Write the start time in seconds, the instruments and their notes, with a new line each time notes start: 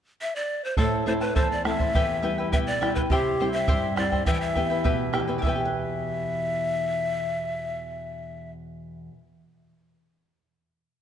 0.21 pan flute E5
0.36 pan flute D5
0.65 pan flute C5
0.77 nylon-string guitar A2, charango E4 A4 C5 E5 A5, pan flute A4, bombo low
1.06 nylon-string guitar A3 C4 E4, charango E4 C5 E5 A5, pan flute C5
1.21 charango E4 C5 A5, pan flute B4
1.35 nylon-string guitar E2, charango E4 A4 C5 E5 A5, pan flute C5, bombo low
1.51 pan flute D5
1.64 nylon-string guitar A3 C4 E4, charango E4 C5 E5 A5, pan flute E5, bombo rim
1.79 charango E4 C5 A5, bombo low
1.94 nylon-string guitar E2, charango E4 G4 B4 E5 G5, bombo low
2.22 nylon-string guitar G3 B3 E4, charango E4 B4 E5 G5
2.38 charango E4 B4 G5
2.52 nylon-string guitar B2, charango E4 G4 B4 E5 G5, pan flute E5, bombo low
2.67 pan flute D5
2.81 nylon-string guitar G3 B3 E4, charango E4 B4 E5 G5, bombo rim
2.95 charango E4 B4 G5, pan flute B4, bombo low
3.10 nylon-string guitar C3, charango E4 G4 C5 E5 G5, pan flute G4, bombo low
3.40 nylon-string guitar G3 C4 E4, charango E4 C5 E5 G5
3.53 charango E4 C5 G5, pan flute E5
3.68 nylon-string guitar G2, charango E4 G4 C5 E5 G5, bombo low
3.96 nylon-string guitar G3 C4 E4, charango E4 C5 E5 G5, pan flute D5, bombo rim
4.12 charango E4 C5 G5, bombo low
4.26 nylon-string guitar E3, charango E4 G4 B4 E5 G5, pan flute E5, bombo low
4.33 pan flute G5
4.41 pan flute E5
4.55 nylon-string guitar B3 E4 G4, charango E4 B4 E5 G5, bombo low
4.70 charango E4 B4 G5
4.84 nylon-string guitar B2, charango E4 G4 B4 E5 G5, bombo low
5.13 nylon-string guitar B3 E4 G4, charango E4 B4 E5 G5, bombo rim
5.20 nylon-string guitar E2
5.27 nylon-string guitar B2, charango E4 B4 G5
5.38 nylon-string guitar E3, charango G4 E5
5.43 nylon-string guitar B3, charango E4 B4, pan flute E5, bombo low
5.49 charango G5
5.56 nylon-string guitar G4
5.65 nylon-string guitar B4